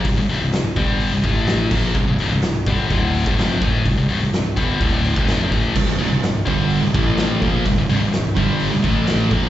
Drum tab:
CC |--------------x-|----------------|----------------|x---------------|
HH |o-o-o-o-o-o-o---|--o-o-o-o-o-o-o-|o-o-o-o-o-o-o-o-|--o-o-o-o-o-o-o-|
SD |----o-------o---|--o-o-------o---|----o-------o---|----o-------o---|
BD |o-----o---o---o-|o-----o-o--o--o-|o-----o-o--o--o-|o-----o---o---o-|

CC |----------------|
HH |o-o-o-o-o-o-o-o-|
SD |----oo------o---|
BD |o-----o---o---o-|